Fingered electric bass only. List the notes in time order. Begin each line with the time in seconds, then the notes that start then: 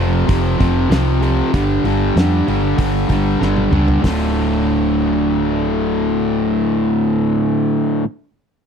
Already playing: F1
0.29 F1
0.61 F1
0.90 C2
1.54 G1
1.84 G1
2.16 F2
2.48 G1
2.79 G1
3.10 G1
3.41 G1
3.71 C#2
4.04 D1